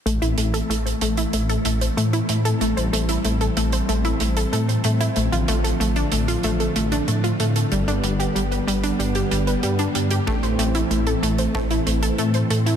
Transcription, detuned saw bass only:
X:1
M:4/4
L:1/16
Q:1/4=94
K:Am
V:1 name="Detuned saw bass" clef=bass
A,,, A,,, A,,,2 A,,,2 A,,,2 A,,,2 A,,,2 A,,2 A,,2 | A,,, A,,, A,,,2 A,,,2 A,,,2 A,,,2 A,,,2 A,,2 A,,2 | A,,, A,,, A,,,2 A,,,2 A,,,2 A,,,2 A,,,2 A,,2 A,,2 | G,,, G,,, G,,,2 G,,,2 G,,,2 G,,,2 G,,,2 G,,2 G,,2 |
A,,, A,,, A,,,2 A,,,2 A,,,2 A,,,2 A,,,2 A,,2 A,,2 |]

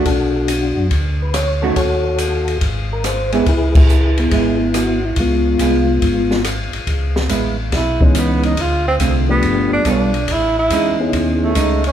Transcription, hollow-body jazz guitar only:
X:1
M:4/4
L:1/8
Q:"Swing" 1/4=141
K:C#phr
V:1 name="Hollow-body jazz guitar"
z6 z [^D,A,CF] | z6 z [G,B,E] | z4 [G,B,E] z3 | z2 [G,B,^E] z4 z |
[K:C#m] z2 [G,B,E] z4 z | z2 [=D,A,=C=F] z3 [=G,B,FA] z | z2 [G,CD] z3 [G,CD] z |]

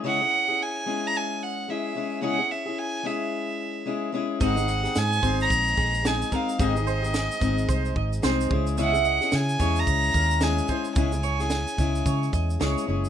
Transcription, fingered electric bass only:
X:1
M:4/4
L:1/16
Q:"Swing 16ths" 1/4=110
K:Db
V:1 name="Fingered electric bass" clef=bass
z16 | z16 | A,,,4 A,,2 A,,,2 B,,,2 B,,,4 z2 | A,,,4- A,,, z A,,,2 C,,2 A,,,2 C,,2 D,,2- |
D,,4 D,2 _F,,2 D,,2 E,,4 z2 | D,,4- D,, z D,,2 D,2 _F,,2 D,, z G,,,2 |]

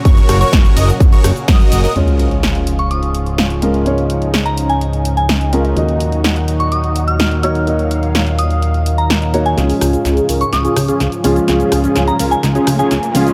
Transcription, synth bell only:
X:1
M:4/4
L:1/16
Q:1/4=126
K:Db
V:1 name="Synth bell"
z16 | z6 z d' e' z6 z | z4 z b2 a z3 a4 z | z6 z d' e' z2 f'3 f' z |
z6 e' z4 b z3 a | z6 z d' e' z6 z | z4 z b2 a z3 a4 z |]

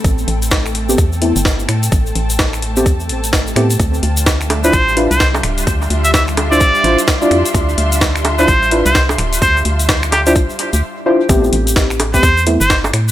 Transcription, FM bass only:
X:1
M:4/4
L:1/16
Q:"Swing 16ths" 1/4=128
K:Am
V:1 name="FM bass" clef=bass
A,,,2 A,,,6 E,,3 G,,,3 A,,2 | A,,,2 A,,,6 E,,2 A,,,4 A,,2 | D,,2 D,,6 A,,,3 C,,3 D,,,2 | D,,2 D,,6 A,,, z A,,, z3 F,, z |
D,,2 D,,6 A,,,3 C,,3 D,,,2 | D,,2 D,,6 A,,, z2 D,, z4 | A,,,2 A,,,6 E,,3 G,,,3 A,,2 |]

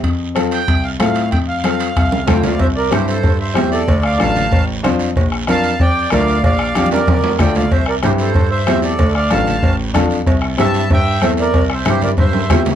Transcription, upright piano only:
X:1
M:4/4
L:1/8
Q:1/4=188
K:Cmix
V:1 name="Upright piano"
z2 [CFA] z3 [CFA] z | z2 [CFA] z3 [CFA] z | z2 [CEG] z3 [CEG] z | z2 [DFA] z3 [DFc] z |
z2 [DFB] z3 [DFB] z | z2 [DFG] z3 [DFA] z | z2 [CEG] z3 [CEG] z | z2 [DFA] z3 [DFA] z |
z2 [CEG] z3 [CEA] z | z2 [CEG] z3 [CEG] z |]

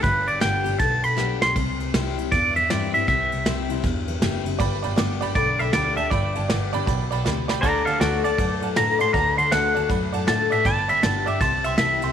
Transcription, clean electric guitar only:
X:1
M:4/4
L:1/8
Q:"Swing" 1/4=158
K:G
V:1 name="Clean electric guitar"
B d g2 a b2 c' | z4 d e d e | e4 z4 | z4 d e d e |
d4 z4 | [d_b] [A=f] [^Fd] d2 z b c' | _b c' f2 z2 a e | a e a e a e e2 |]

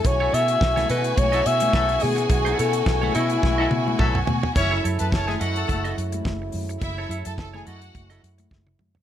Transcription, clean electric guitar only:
X:1
M:4/4
L:1/16
Q:"Swing 16ths" 1/4=106
K:F#dor
V:1 name="Clean electric guitar"
z [EAc] [EAc] z2 [EAc] [EAd] z2 [EAd] z6 | z [EAc] [EAc] z2 [EAc] [EAd] z2 [EAd] z6 | z [EAc] [EAc] z2 [EAc] [EAd] z2 [EAd] z6 | z [EAc] [EAc] z2 [EAc] [EAd] z2 [EAd] z6 |]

